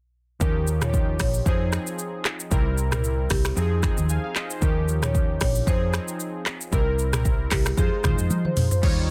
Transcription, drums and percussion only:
0.41 kick loud
0.41 shaker medium
0.67 shaker medium
0.82 finger snap medium
0.82 cross-stick loud
0.82 mid tom loud
0.82 shaker medium
0.94 kick loud
0.94 shaker medium
1.20 finger snap medium
1.20 kick medium
1.20 cross-stick medium
1.20 open hi-hat medium
1.20 shaker medium
1.34 shaker medium
1.46 kick loud
1.46 shaker medium
1.72 finger snap medium
1.72 cross-stick medium
1.72 shaker medium
1.87 shaker medium
1.99 shaker medium
2.25 finger snap medium
2.25 cross-stick medium
2.25 clap medium
2.25 shaker soft
2.40 shaker medium
2.51 kick loud
2.51 shaker medium
2.78 shaker medium
2.92 finger snap medium
2.92 cross-stick loud
2.92 mid tom loud
2.92 shaker medium
3.04 shaker medium
3.30 finger snap medium
3.30 kick medium
3.30 cross-stick medium
3.30 open hi-hat medium
3.30 shaker medium
3.45 finger snap medium
3.45 cross-stick medium
3.45 shaker medium
3.57 shaker medium
3.83 finger snap medium
3.83 kick medium
3.83 cross-stick medium
3.83 shaker medium
3.98 shaker medium
4.09 shaker medium
4.36 finger snap medium
4.36 cross-stick medium
4.36 clap loud
4.36 shaker soft
4.50 shaker medium
4.62 kick loud
4.62 shaker medium
4.88 shaker medium
5.03 finger snap medium
5.03 cross-stick loud
5.03 mid tom medium
5.03 shaker medium
5.15 kick loud
5.15 shaker medium
5.41 finger snap medium
5.41 kick medium
5.41 cross-stick medium
5.41 open hi-hat medium
5.41 shaker medium
5.55 shaker medium
5.67 kick loud
5.67 shaker medium
5.94 finger snap medium
5.94 cross-stick medium
5.94 shaker medium
6.08 shaker medium
6.20 shaker medium
6.46 finger snap medium
6.46 cross-stick medium
6.46 clap medium
6.46 shaker medium
6.61 shaker medium
6.73 kick loud
6.73 shaker medium
6.99 shaker medium
7.13 finger snap medium
7.13 cross-stick loud
7.13 mid tom loud
7.13 shaker medium
7.25 kick loud
7.25 shaker medium
7.51 finger snap medium
7.51 kick medium
7.51 cross-stick medium
7.51 clap medium
7.51 open hi-hat medium
7.51 shaker medium
7.66 finger snap medium
7.66 cross-stick loud
7.66 shaker medium
7.78 kick loud
7.78 shaker medium
8.04 finger snap medium
8.04 kick medium
8.04 cross-stick medium
8.04 mid tom medium
8.04 shaker medium
8.19 shaker medium
8.30 high tom medium
8.30 shaker medium
8.45 mid tom medium
8.57 mid tom medium
8.57 open hi-hat medium
8.57 shaker soft
8.71 floor tom medium
8.71 shaker medium
8.83 kick loud
8.83 crash medium

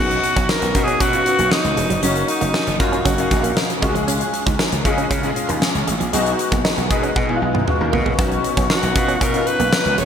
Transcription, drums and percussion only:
0.11 closed hi-hat soft
0.24 closed hi-hat medium
0.36 kick medium
0.36 closed hi-hat medium
0.49 snare loud
0.62 closed hi-hat medium
0.75 kick medium
0.75 closed hi-hat medium
0.88 closed hi-hat soft
1.00 kick medium
1.00 closed hi-hat medium
1.13 closed hi-hat soft
1.26 closed hi-hat medium
1.39 closed hi-hat medium
1.52 snare loud
1.65 closed hi-hat soft
1.77 closed hi-hat medium
1.90 closed hi-hat soft
2.03 closed hi-hat medium
2.16 closed hi-hat soft
2.28 closed hi-hat medium
2.41 closed hi-hat soft
2.54 snare loud
2.67 closed hi-hat medium
2.80 kick medium
2.80 closed hi-hat medium
2.93 closed hi-hat soft
3.06 kick medium
3.06 closed hi-hat medium
3.18 closed hi-hat medium
3.31 kick medium
3.31 closed hi-hat medium
3.44 closed hi-hat medium
3.57 snare loud
3.70 closed hi-hat soft
3.82 kick medium
3.82 closed hi-hat medium
3.95 closed hi-hat soft
4.08 closed hi-hat medium
4.21 closed hi-hat soft
4.34 closed hi-hat medium
4.47 kick medium
4.47 closed hi-hat medium
4.59 snare loud
4.72 closed hi-hat medium
4.85 kick medium
4.85 closed hi-hat medium
4.98 closed hi-hat soft
5.11 kick medium
5.11 closed hi-hat medium
5.23 closed hi-hat soft
5.36 closed hi-hat medium
5.49 closed hi-hat medium
5.62 snare loud
5.75 closed hi-hat soft
5.88 closed hi-hat medium
6.01 closed hi-hat soft
6.13 closed hi-hat medium
6.26 closed hi-hat soft
6.39 closed hi-hat medium
6.52 kick medium
6.52 closed hi-hat soft
6.65 snare loud
6.78 closed hi-hat medium
6.91 kick medium
6.91 closed hi-hat medium
7.04 closed hi-hat soft
7.16 kick medium
7.16 high tom medium
7.29 high tom soft
7.55 mid tom medium
7.68 mid tom medium
7.93 floor tom medium
8.06 floor tom medium
8.19 kick loud
8.19 closed hi-hat medium
8.32 closed hi-hat soft
8.44 closed hi-hat medium
8.57 kick medium
8.57 closed hi-hat soft
8.70 snare loud
8.83 closed hi-hat medium
8.96 kick medium
8.96 closed hi-hat medium
9.09 closed hi-hat soft
9.21 kick medium
9.21 closed hi-hat medium
9.34 closed hi-hat medium
9.47 closed hi-hat medium
9.60 closed hi-hat medium
9.73 snare loud
9.86 closed hi-hat soft
9.98 closed hi-hat medium

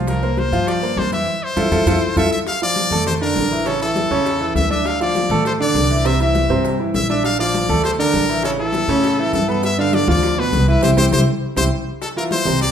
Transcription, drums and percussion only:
0.07 high bongo medium
0.07 high conga soft
0.07 maracas medium
0.22 high conga soft
0.22 maracas soft
0.37 high bongo medium
0.37 high conga medium
0.37 maracas soft
0.53 maracas medium
0.67 high bongo medium
0.67 high conga soft
0.67 maracas medium
0.82 high conga soft
0.82 maracas soft
0.97 high bongo medium
0.97 low bongo medium
0.97 high conga medium
0.97 maracas soft
1.12 high conga medium
1.12 maracas medium
1.57 low bongo loud
1.57 high conga loud
1.57 maracas loud
1.72 low bongo medium
1.72 high conga loud
1.72 maracas medium
1.87 low bongo loud
1.87 high conga loud
1.87 maracas loud
2.17 low bongo loud
2.17 high conga loud
2.17 maracas loud
2.47 high bongo medium
2.47 high conga soft
2.47 maracas medium
2.61 high conga soft
2.76 high bongo medium
2.76 high conga medium
2.76 maracas medium
2.91 high bongo soft
2.91 high conga loud
2.91 low conga medium
2.91 maracas soft
3.06 high bongo medium
3.06 high conga soft
3.06 low conga medium
3.06 maracas medium
3.36 high bongo soft
3.36 low bongo medium
3.36 high conga medium
3.36 maracas medium
3.51 high bongo soft
3.51 maracas soft
3.66 high bongo medium
3.66 high conga soft
3.66 maracas medium
3.81 high bongo soft
3.81 high conga soft
3.81 maracas medium
3.96 high bongo medium
3.96 high conga medium
3.96 maracas medium
4.11 high bongo soft
4.11 high conga soft
4.11 maracas soft
4.26 high bongo medium
4.26 high conga soft
4.26 maracas medium
4.41 high conga soft
4.55 high bongo soft
4.55 low bongo medium
4.55 high conga medium
4.55 maracas medium
4.70 high bongo soft
4.70 high conga medium
4.70 maracas soft
4.85 high bongo medium
4.85 high conga soft
4.85 maracas medium
5.00 high bongo soft
5.00 high conga soft
5.00 maracas medium
5.15 high bongo medium
5.15 high conga medium
5.15 maracas medium
5.30 high bongo soft
5.30 high conga medium
5.30 low conga medium
5.30 maracas soft
5.45 high bongo medium
5.45 maracas medium
5.60 high conga soft
5.75 high bongo soft
5.75 low bongo medium
5.75 high conga medium
5.75 maracas medium
5.90 high bongo soft
5.90 maracas soft
6.05 high bongo medium
6.05 high conga soft
6.05 maracas medium
6.20 high bongo soft
6.20 high conga soft
6.20 maracas medium
6.35 high bongo medium
6.35 high conga loud
6.35 maracas medium
6.50 high conga soft
6.50 maracas soft
6.65 high bongo medium
6.65 high conga soft
6.65 maracas medium
6.80 high conga soft
6.94 high bongo soft
6.94 low bongo medium
6.94 high conga medium
6.94 maracas medium
7.09 high bongo soft
7.09 high conga medium
7.09 maracas soft
7.24 high bongo medium
7.24 high conga soft
7.24 maracas medium
7.39 high bongo soft
7.39 high conga soft
7.54 high bongo medium
7.54 high conga medium
7.54 maracas medium
7.69 high bongo soft
7.69 high conga medium
7.69 low conga medium
7.69 maracas soft
7.84 high bongo medium
7.84 maracas medium
7.99 high conga soft
8.13 high bongo soft
8.13 low bongo medium
8.13 high conga medium
8.13 maracas medium
8.29 high bongo soft
8.43 high bongo medium
8.43 high conga soft
8.43 maracas medium
8.58 high bongo soft
8.58 high conga soft
8.73 high bongo medium
8.73 high conga medium
8.73 maracas medium
8.88 high bongo soft
8.88 high conga soft
8.88 maracas soft
9.03 high bongo medium
9.03 high conga soft
9.03 maracas medium
9.18 high conga soft
9.33 high bongo soft
9.33 low bongo medium
9.33 high conga medium
9.33 maracas medium
9.48 high bongo soft
9.48 maracas soft
9.63 high bongo medium
9.63 high conga soft
9.63 maracas medium
9.78 high bongo soft
9.78 high conga soft
9.93 high bongo medium
9.93 high conga loud
9.93 maracas medium
10.08 high bongo soft
10.08 high conga loud
10.08 low conga medium
10.08 maracas soft
10.23 high bongo medium
10.23 maracas medium
10.38 high conga soft
10.53 high bongo soft
10.53 low bongo medium
10.53 high conga medium
10.53 maracas medium
10.68 high bongo soft
10.68 maracas soft
10.82 low bongo loud
10.82 high conga loud
10.82 maracas loud
10.97 low bongo loud
10.97 high conga loud
10.97 maracas loud
11.12 low bongo loud
11.12 high conga loud
11.12 maracas loud
11.57 low bongo medium
11.57 high conga medium
11.57 maracas loud
12.01 high bongo medium
12.01 high conga soft
12.01 maracas medium
12.16 high bongo soft
12.16 high conga soft
12.31 high bongo medium
12.31 high conga medium
12.31 maracas medium
12.45 high bongo soft
12.45 high conga loud
12.45 low conga medium
12.61 high bongo medium
12.61 high conga soft
12.61 maracas medium

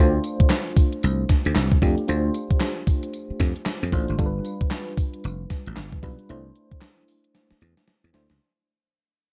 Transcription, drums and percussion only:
0.24 closed hi-hat medium
0.24 tambourine medium
0.40 kick medium
0.40 closed hi-hat medium
0.50 snare loud
0.50 clap loud
0.50 closed hi-hat medium
0.50 tambourine medium
0.77 kick loud
0.77 open hi-hat medium
0.77 tambourine medium
0.92 closed hi-hat medium
1.03 closed hi-hat medium
1.03 tambourine medium
1.29 kick medium
1.29 snare medium
1.29 closed hi-hat medium
1.29 tambourine medium
1.45 closed hi-hat medium
1.55 snare loud
1.55 clap medium
1.55 closed hi-hat medium
1.55 tambourine loud
1.72 kick loud
1.82 kick loud
1.82 open hi-hat medium
1.98 closed hi-hat medium
2.08 closed hi-hat medium
2.08 tambourine medium
2.34 closed hi-hat medium
2.34 tambourine medium
2.51 kick medium
2.51 closed hi-hat medium
2.60 snare loud
2.60 clap loud
2.60 closed hi-hat medium
2.60 tambourine loud
2.87 kick loud
2.87 open hi-hat medium
2.87 tambourine medium
3.03 closed hi-hat medium
3.13 closed hi-hat medium
3.13 tambourine medium
3.40 kick medium
3.40 snare medium
3.40 closed hi-hat medium
3.40 tambourine medium
3.56 closed hi-hat medium
3.66 snare loud
3.66 clap medium
3.66 closed hi-hat medium
3.66 tambourine loud
3.92 kick loud
3.92 open hi-hat medium
4.08 closed hi-hat medium
4.19 kick loud
4.19 closed hi-hat medium
4.19 tambourine medium
4.45 closed hi-hat medium
4.45 tambourine medium
4.61 kick medium
4.61 closed hi-hat medium
4.71 snare loud
4.71 clap loud
4.71 closed hi-hat medium
4.71 tambourine loud
4.97 kick loud
4.97 open hi-hat medium
4.97 tambourine medium
5.14 closed hi-hat medium
5.24 closed hi-hat medium
5.24 tambourine medium
5.50 kick medium
5.50 snare medium
5.50 closed hi-hat medium
5.50 tambourine medium
5.66 closed hi-hat medium
5.76 snare loud
5.76 clap medium
5.76 closed hi-hat medium
5.76 tambourine loud
5.92 kick loud
6.03 kick loud
6.03 open hi-hat medium
6.19 closed hi-hat medium
6.29 closed hi-hat medium
6.55 closed hi-hat medium
6.71 kick medium
6.71 closed hi-hat medium
6.81 snare loud
6.81 clap loud
6.81 closed hi-hat medium
7.08 open hi-hat medium
7.24 closed hi-hat medium
7.35 snare medium
7.35 closed hi-hat medium
7.51 snare medium
7.61 closed hi-hat medium
7.77 snare medium
7.77 closed hi-hat soft
7.88 snare medium
7.88 closed hi-hat medium
8.14 snare loud
8.14 closed hi-hat medium
8.30 snare medium
8.30 closed hi-hat medium

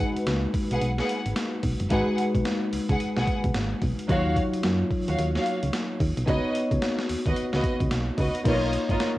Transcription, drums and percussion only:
0.00 kick loud
0.00 closed hi-hat medium
0.17 closed hi-hat medium
0.27 snare loud
0.27 closed hi-hat medium
0.54 kick loud
0.54 open hi-hat medium
0.71 closed hi-hat medium
0.81 closed hi-hat medium
0.98 snare medium
1.09 closed hi-hat medium
1.26 closed hi-hat medium
1.36 snare loud
1.36 closed hi-hat medium
1.63 kick medium
1.63 open hi-hat medium
1.80 closed hi-hat medium
1.90 kick loud
1.90 closed hi-hat medium
2.18 closed hi-hat medium
2.35 kick medium
2.35 closed hi-hat medium
2.45 snare loud
2.45 closed hi-hat medium
2.73 open hi-hat medium
2.89 kick medium
2.89 closed hi-hat medium
3.00 closed hi-hat medium
3.17 snare medium
3.27 kick loud
3.27 closed hi-hat medium
3.44 kick loud
3.44 closed hi-hat medium
3.55 snare loud
3.55 closed hi-hat medium
3.82 kick medium
3.82 open hi-hat medium
3.99 closed hi-hat soft
4.09 kick loud
4.09 closed hi-hat medium
4.36 kick medium
4.36 closed hi-hat medium
4.54 closed hi-hat medium
4.64 snare loud
4.64 closed hi-hat medium
4.91 kick loud
4.91 open hi-hat medium
5.08 closed hi-hat medium
5.19 closed hi-hat medium
5.35 snare medium
5.46 closed hi-hat medium
5.63 closed hi-hat soft
5.73 snare loud
5.73 closed hi-hat medium
6.00 kick medium
6.00 open hi-hat medium
6.17 closed hi-hat soft
6.27 kick loud
6.27 closed hi-hat medium
6.55 closed hi-hat medium
6.71 kick medium
6.71 closed hi-hat medium
6.82 snare loud
6.82 closed hi-hat medium
6.99 snare medium
7.09 open hi-hat medium
7.26 kick medium
7.26 closed hi-hat medium
7.36 closed hi-hat medium
7.53 snare medium
7.64 kick loud
7.64 closed hi-hat medium
7.80 kick loud
7.80 closed hi-hat medium
7.91 snare loud
7.91 closed hi-hat medium
8.18 kick medium
8.18 open hi-hat medium
8.35 closed hi-hat medium
8.45 kick loud
8.45 closed hi-hat medium
8.45 crash loud
8.73 closed hi-hat medium
8.89 kick medium
8.89 closed hi-hat soft
9.00 snare loud
9.00 closed hi-hat medium

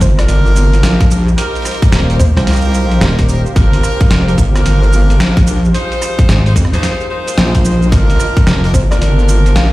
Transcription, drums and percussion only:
0.01 kick medium
0.01 shaker medium
0.19 cross-stick medium
0.19 closed hi-hat medium
0.19 shaker soft
0.29 closed hi-hat medium
0.29 shaker soft
0.46 shaker soft
0.56 shaker medium
0.73 closed hi-hat soft
0.73 shaker soft
0.83 snare loud
0.83 closed hi-hat medium
0.83 shaker soft
1.00 kick loud
1.00 closed hi-hat medium
1.00 shaker soft
1.11 shaker medium
1.28 shaker soft
1.38 closed hi-hat medium
1.38 shaker soft
1.55 closed hi-hat soft
1.55 shaker soft
1.62 cross-stick soft
1.62 closed hi-hat soft
1.65 closed hi-hat soft
1.65 shaker medium
1.71 closed hi-hat soft
1.75 closed hi-hat soft
1.82 kick loud
1.82 closed hi-hat soft
1.82 shaker soft
1.92 snare loud
1.92 closed hi-hat medium
1.92 shaker soft
2.10 closed hi-hat soft
2.10 shaker soft
2.20 kick medium
2.20 shaker medium
2.37 cross-stick medium
2.37 closed hi-hat medium
2.47 snare medium
2.47 closed hi-hat medium
2.47 shaker soft
2.50 shaker soft
2.53 shaker soft
2.56 shaker soft
2.61 shaker soft
2.65 shaker soft
2.74 shaker medium
2.91 closed hi-hat soft
3.01 snare loud
3.01 closed hi-hat medium
3.01 shaker soft
3.19 kick medium
3.19 closed hi-hat medium
3.19 shaker soft
3.29 shaker medium
3.46 shaker soft
3.56 kick loud
3.56 closed hi-hat medium
3.56 shaker soft
3.73 closed hi-hat soft
3.73 shaker soft
3.83 cross-stick soft
3.83 shaker medium
4.01 kick loud
4.01 closed hi-hat soft
4.01 shaker soft
4.11 snare loud
4.11 closed hi-hat medium
4.11 shaker soft
4.28 closed hi-hat soft
4.28 shaker soft
4.38 kick medium
4.38 shaker medium
4.56 cross-stick medium
4.56 closed hi-hat medium
4.56 shaker soft
4.66 closed hi-hat medium
4.66 shaker soft
4.83 shaker soft
4.93 shaker medium
5.10 closed hi-hat soft
5.10 shaker soft
5.20 snare loud
5.20 closed hi-hat medium
5.20 shaker soft
5.37 kick loud
5.37 closed hi-hat medium
5.37 shaker soft
5.47 shaker medium
5.65 shaker soft
5.75 closed hi-hat medium
5.75 shaker soft
5.92 closed hi-hat soft
5.92 shaker soft
6.02 cross-stick soft
6.02 shaker medium
6.19 kick loud
6.19 closed hi-hat soft
6.19 shaker soft
6.29 snare loud
6.29 closed hi-hat medium
6.29 shaker soft
6.46 closed hi-hat soft
6.46 shaker soft
6.56 kick medium
6.56 shaker medium
6.65 cross-stick soft
6.74 closed hi-hat medium
6.74 shaker soft
6.83 snare medium
6.83 closed hi-hat medium
6.83 shaker soft
7.00 shaker soft
7.28 closed hi-hat soft
7.28 shaker medium
7.38 snare loud
7.38 closed hi-hat medium
7.38 shaker soft
7.55 kick medium
7.55 closed hi-hat medium
7.55 shaker soft
7.65 shaker medium
7.82 shaker soft
7.92 kick loud
7.92 closed hi-hat medium
7.92 shaker soft
8.10 closed hi-hat soft
8.10 shaker soft
8.20 cross-stick soft
8.20 shaker medium
8.37 kick loud
8.37 closed hi-hat soft
8.37 shaker soft
8.47 snare loud
8.47 closed hi-hat medium
8.47 shaker soft
8.64 closed hi-hat soft
8.64 shaker soft
8.74 kick medium
8.74 shaker medium
8.92 cross-stick soft
8.92 closed hi-hat medium
8.92 shaker soft
9.02 closed hi-hat medium
9.02 shaker soft
9.19 shaker soft
9.28 shaker medium
9.46 closed hi-hat soft
9.46 shaker soft
9.56 snare loud
9.56 closed hi-hat medium
9.56 shaker soft

